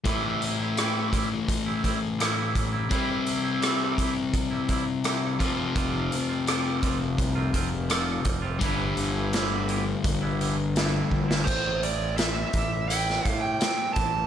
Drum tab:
CC |----------------|----------------|----------------|----------------|
HH |x-x-x-x-x-x-x-x-|x-x-x-x-x-x-x-x-|x-x-x-x-x-x-x-x-|x-x-x-x-x-x-x---|
SD |----r-------r---|----r-------r---|----r-------r---|----o-------o--o|
BD |o-----o-o-o---o-|o-----o-o-o---o-|o-----o-o-o---o-|o-------o-----o-|

CC |x---------------|
HH |--x-x-x-x-x-x-x-|
SD |----o----o--o---|
BD |o-----o---o---o-|